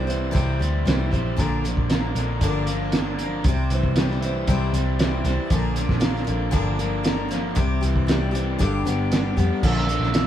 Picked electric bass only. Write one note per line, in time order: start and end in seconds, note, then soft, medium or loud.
0.00 0.31 C2 medium
0.35 0.59 C2 medium
0.61 0.84 D2 medium
0.86 1.10 C2 medium
1.13 1.36 A#1 medium
1.39 1.75 A#1 medium
1.77 2.13 A#1 medium
2.15 2.40 A#1 medium
2.42 3.41 G1 medium
3.45 3.69 C2 medium
3.71 3.83 C2 medium
3.83 4.44 C2 medium
4.48 4.72 C2 medium
4.73 5.22 C2 medium
5.25 5.37 C2 medium
5.51 5.87 A#1 medium
5.89 6.26 A#1 medium
6.28 6.52 A#1 medium
6.53 7.53 G1 medium
7.57 7.81 C2 medium
7.83 7.95 C2 medium
7.96 8.56 C2 medium
8.60 8.84 G1 medium
8.85 9.34 G1 medium
9.37 9.49 F2 medium
9.63 9.99 A#1 medium
10.00 10.27 A#1 medium